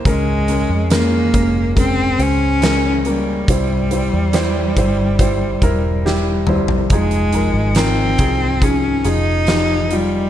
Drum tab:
HH |x-x-x-x-x-x-x-x-|x-x-x-x-x-x-----|xxx-x-x-x-x-x-x-|
SD |----o-------o---|----o-------o---|----o-------o---|
T2 |----------------|--------------o-|----------------|
FT |----------------|---------------o|----------------|
BD |o-----o-o-------|o-----o-o-o-----|o-----o-o-------|